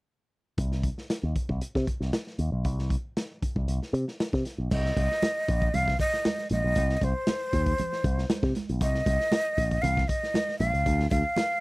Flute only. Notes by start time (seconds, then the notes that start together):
4.71 D#5
5.74 F5
6.00 D#5
6.52 D#5
6.97 D#5
7.04 C5
8.82 D#5
9.82 F5
10.08 D#5
10.59 F5
11.10 F5